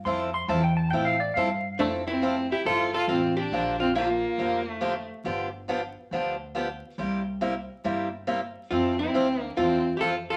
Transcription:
0.05 F2 F3 C4 E4 A4 C6
0.34 C6
0.48 E2 F3 C4 E4 A4 A5
0.64 G5
0.77 A5
0.91 A2 F3 C4 E4 A4 G5
1.05 F5
1.20 D5
1.34 G2 F3 C4 E4 A4 F5
1.79 F1 F3 A3 C4 D4 E4 A4
2.07 C4 E4
2.22 F3 C4 E4 A4
2.51 E4 G4
2.65 G1 F3 C4 E4 F4 A4
2.94 F4 A4
3.07 A1 F3 C4 E4 F4 A4
3.37 D4 G4
3.51 A#1 D3 F3 A#3 D4 G4
3.80 C4 F4
3.95 D3 F3 A#3 D4 F4 G4
4.38 F1 D3 F3 A#3 D4 G4
4.69 A3 E4
4.81 D3 F3 A#3 D4 G4
5.24 G1 D3 F3 B3 D4 G4
5.68 D3 F3 B3 D4 G4
6.11 D2 D3 F3 B3 D4 G4
6.55 D3 F3 B3 D4 G4
6.98 C2 C3 G3 A#3 E4 G4
7.41 C3 G3 A#3 E4 G4
7.84 G1 C3 G3 A#3 E4 G4
8.27 C3 G3 A#3 E4 G4
8.71 F2 F3 C4 E4 F4 A4
8.99 C4 E4
9.14 D2 F3 C4 E4 A4
9.41 A#3 D4
9.57 E2 F3 C4 E4 F4 A4
9.97 F3 C4 E4 G4 A4
10.01 F2 E4 F4 A4
10.30 F4 A4

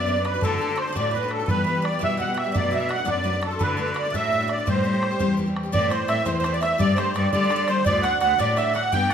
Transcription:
Already playing: F#2 D5 D6
0.06 B3 D4 F#4 B4, bodhran
0.16 D4 F#4 B4
0.25 B4 B5, bodhran
0.34 D4 F#4 B4
0.41 D2 A2 D3 A3 D4 A4 A5, bodhran
0.45 F#4
0.59 D3 A3 D4 A4
0.63 F#4
0.70 D3 A3 D4 F#4
0.76 C5 C6, bodhran
0.87 D3 A3 D4 F#4
0.93 D2 A2 D3 D5 D6, bodhran
0.97 A3 D4 F#4 D5
1.11 D3 B4 B5, bodhran
1.16 A3 D4 F#4
1.23 D3 A3 D4 F#4
1.28 A4 A5, bodhran
1.33 A4
1.39 D3 A3 D4 F#4
1.46 E3 G3 B3 B4 B5, bodhran
1.50 G4 B4
1.64 E3 G3 B3 B4 B5
1.69 G4
1.75 G3 B3 G4
1.82 D5 D6, bodhran
1.92 G3 B3 G4
1.99 B2 E3 G3 B3 G4 E5, bodhran
2.03 E5 F#6
2.07 E6
2.17 E3 G3 B3 G4 F#5, bodhran
2.27 G3 B3 G4
2.34 E5, bodhran
2.44 G3 B3 G4
2.52 B2 F#3 A3 D4 F#4 D5 D6, bodhran
2.57 D5
2.71 F#3 A3 D4 F#4 E5 E6, bodhran
2.75 E5
2.80 A3 D4 F#4
2.89 F#5 F#6, bodhran
2.93 F#5
2.98 A3 D4 F#4
3.05 F#2 B2 F#3 A3 D4 F#4 D5 D6, bodhran
3.10 D5
3.24 F#3 A3 D4 F#4 B4, bodhran
3.33 A3 D4 F#4
3.41 A4, bodhran
3.51 A3 D4 F#4 C6
3.59 D2 A2 D3 A3 D4 F#4 B4 B5, bodhran
3.75 D3 A3 D4 F#4 A4 B4, bodhran
3.81 B4
3.86 D3 A3 D4 F#4
3.94 D5 D6, bodhran
3.98 D5
4.05 D3 A3 D4 F#4
4.10 D2 A2 E5 F#6, bodhran
4.15 D3 A3 D4 F#4 E5 E6
4.32 D3 A3 D4 F#4, bodhran
4.41 D3 A3 D4 F#4
4.48 D5 D6 E6, bodhran
4.58 D3 A3 D4 F#4
4.66 A2 E3 G3 C4 G4 C5 D6, bodhran
4.71 C6
4.84 E3 G3 C4 G4, bodhran
4.94 G3 C4 G4
5.03 bodhran
5.11 G3 C4 G4
5.19 E2 A2 E3 G3 C4 G4, bodhran
5.37 E3 G3 C4 G4, bodhran
5.46 G3 C4 G4
5.56 bodhran
5.63 G3 C4 G4
5.72 A2 E3 A3 C4 E4 D5 D6, bodhran
5.90 E3 A3 C4 E4 C5 C6, bodhran
6.08 A2 E3 A3 C4 E4 E5 E6, bodhran
6.25 E2 A2 E3 A3 C4 E4 C5 C6, bodhran
6.33 C5
6.38 C5 C6
6.44 E3 A3 C4 E4, bodhran
6.53 D5 D6
6.61 E3 A3 C4 E4 E5 E6, bodhran
6.78 G2 G3 A3 D4 G4 D5 D6, bodhran
6.96 G3 A3 D4 G4 C5 C6, bodhran
7.14 G2 G3 A3 D4 G4 D5 D6, bodhran
7.32 D3 G3 A3 D4 G4 D5 D6, bodhran
7.44 D5
7.50 G3 A3 D4 G4, bodhran
7.56 D5
7.68 G3 A3 D4 G4 C5 C6, bodhran
7.85 D2 A2 D3 A3 D4 F#4 D5 D6, bodhran
8.02 D3 A3 D4 F#4 F#5 F#6, bodhran
8.20 D2 D3 A3 D4 F#4 F#5 F#6, bodhran
8.38 D2 A2 D3 A3 D4 F#4 D5 D6, bodhran
8.56 D3 A3 D4 F#4 E5, bodhran
8.74 D3 A3 D4 F#4 F#5 F#6, bodhran
8.92 G2 G3 B3 D4 G4 G5 G6, bodhran
9.10 G3 F#5 A6, bodhran

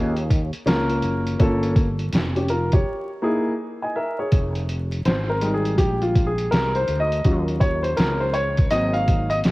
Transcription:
Already playing: D#2 A#3 C#4 F4 G#4
0.16 closed hi-hat
0.30 kick, closed hi-hat
0.53 muted fretless electric bass stroke, closed hi-hat
0.66 C#2 A#3 C#4 F4 A#4, snare, closed hi-hat
0.90 closed hi-hat
1.02 F#1, closed hi-hat
1.27 closed hi-hat
1.39 G1 A#3 C#4 F4 A4, kick, closed hi-hat
1.63 closed hi-hat
1.76 kick, closed hi-hat
1.99 closed hi-hat
2.12 F1, snare, closed hi-hat
2.36 C#4 G4, closed hi-hat
2.48 F4 A#4, closed hi-hat
2.72 G4 C#5, kick, closed hi-hat
3.22 A#3 D#4 E4 G#4
3.82 D#5 G#5
3.96 A#4 E5
4.19 G#4 C#5
4.32 F1, kick, closed hi-hat
4.55 closed hi-hat
4.69 closed hi-hat
4.92 closed hi-hat
5.05 G#1 C5, snare, closed hi-hat
5.30 A#4
5.41 G3 G#3 D#4, closed hi-hat
5.54 G#4
5.65 closed hi-hat
5.78 A#1 G4, kick, closed hi-hat
6.02 F4, closed hi-hat
6.16 kick, closed hi-hat
6.27 G#4
6.38 closed hi-hat
6.51 C2 A#4, snare, closed hi-hat
6.75 C5, closed hi-hat
6.88 D2, closed hi-hat
7.00 D#5
7.12 closed hi-hat
7.25 D#2 F#3 C#4 F4, kick, closed hi-hat
7.48 closed hi-hat
7.60 C#5, kick, closed hi-hat
7.83 C5, closed hi-hat
7.97 C#2 A#4, snare, closed hi-hat
8.20 C5
8.33 C#5, closed hi-hat
8.57 kick, closed hi-hat
8.70 G#1 F#3 A#3 C4 D#5, closed hi-hat
8.93 F5, closed hi-hat
9.08 kick, closed hi-hat
9.30 D#5, closed hi-hat
9.44 A#1, snare, closed hi-hat

